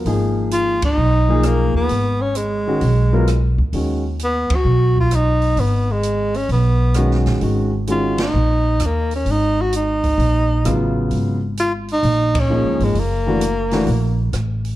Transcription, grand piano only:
X:1
M:4/4
L:1/8
Q:"Swing" 1/4=130
K:G#dor
V:1 name="Grand piano"
[E,A,DG]3 z2 [E,A,DG]3 | z3 [D,G,CF] z [F,B,EA] z2 | [D,G,CF] z6 z | z6 [D,G,CF]2 |
[D,G,CF] z [D,G,CF] z4 z | z6 [C,F,B,E]2- | [C,F,B,E] z4 z [E,A,DG]2 | z [=E,=A,=DF] z [E,A,DF] z4 |]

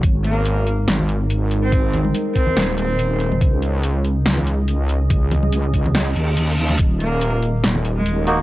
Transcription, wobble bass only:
X:1
M:4/4
L:1/8
Q:"Swing 16ths" 1/4=142
K:Dbdor
V:1 name="Wobble bass" clef=bass
A,,,4 A,,,4- | A,,,2 z2 E,,,4 | D,,4 D,,4- | D,,2 D,,3 E,,3 |
E,,,4 E,,,4 |]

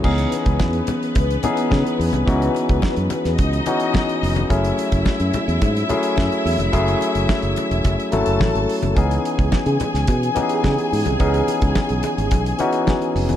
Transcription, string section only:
X:1
M:4/4
L:1/8
Q:1/4=108
K:C#m
V:1 name="String section"
[B,B]8- | [B,B]4 [Dd]4 | [Ee]8- | [Ee]4- [Ee] [Aa]3 |
[Gg]8- | [Gg]8 |]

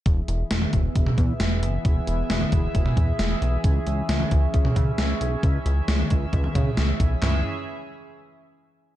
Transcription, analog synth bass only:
X:1
M:4/4
L:1/8
Q:1/4=134
K:C#m
V:1 name="Analog synth bass" clef=bass
E,,, E,,, E,,, E,,, E,,, E,, E,,, F,,, | E,,, E,,, E,,, E,,, E,,, E,, E,,, B,,, | C,, C,, C,, C,, C,, C, C,, B,,, | C,, C,, C,, C,, C,, C, C,, B,,, |
C,, z6 z |]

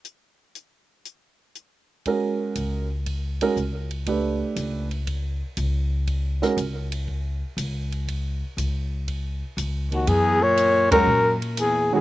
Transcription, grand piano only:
X:1
M:4/4
L:1/8
Q:"Swing" 1/4=120
K:F#
V:1 name="Grand piano"
z8 | [G,CFA]3 z2 [G,CFA] z2 | [=A,=D=GB]3 z4 z | z [G,CFA] z6 |
z8 | [K:F#mix] z3 [G,CFA] z3 [D,G,CF] |]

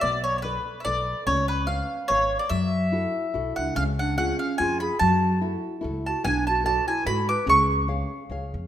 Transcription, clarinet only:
X:1
M:3/4
L:1/8
Q:"Swing" 1/4=145
K:F#m
V:1 name="Clarinet"
z6 | z6 | z4 z D | C D C C ^E G |
F2 z3 F | D F F E F B | G2 z4 |]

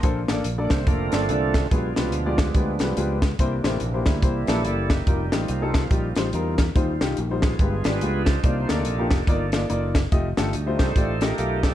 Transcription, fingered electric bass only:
X:1
M:4/4
L:1/8
Q:"Swing" 1/4=143
K:Bb
V:1 name="Fingered electric bass" clef=bass
B,,, A,,, B,,, C,, F,,, G,,, C,,2 | =B,,, C,, D,,2 D,, C,, _D,,2 | C,, A,,, B,,, D,, C,, B,,, _G,,,2 | F,,, A,,, C,,2 B,,, A,,, =E,,2 |
E,, C,, B,,,2 G,,, _A,,, _D,,2 | C,, D,, B,,, F,,, G,,,2 _G,,,2 | F,,, G,,, D,, C,, A,,,2 _C,,2 |]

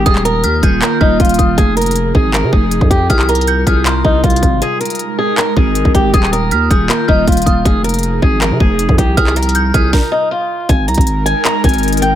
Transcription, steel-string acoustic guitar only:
X:1
M:4/4
L:1/8
Q:1/4=158
K:Fm
V:1 name="Steel-string acoustic guitar"
A B2 A B E F2 | A B2 A B A2 G | A B2 A B E F2 | A B2 A B A2 G |
A B2 A B E F2 | A B2 A B A2 G | A B2 A B E F2 | a b2 a b a2 g |]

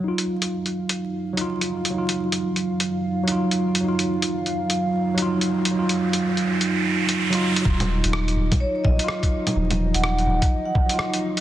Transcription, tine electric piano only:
X:1
M:4/4
L:1/16
Q:"Swing 16ths" 1/4=126
K:Ebm
V:1 name="Tine electric piano"
[G,EF]8- [G,EF]3 [G,EF]4- [G,EF] | [G,EF]8- [G,EF]3 [G,EF]4- [G,EF] | [G,EF]8- [G,EF]3 [G,EF]4- [G,EF] | [G,EF]8- [G,EF]3 z2 [G,EF]3 |
[G,EF]8- [G,EF]3 [G,EF]4- [G,EF] | [F,G,E]8- [F,G,E]3 [G,EF]4- [G,EF] |]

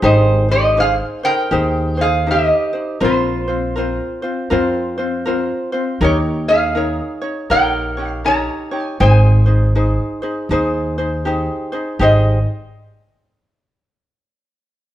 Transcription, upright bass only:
X:1
M:4/4
L:1/8
Q:"Swing" 1/4=80
K:Ab
V:1 name="Upright bass" clef=bass
A,,,4 E,,4 | B,,,4 F,,4 | E,,4 B,,,4 | A,,,4 E,,4 |
A,,, z6 z |]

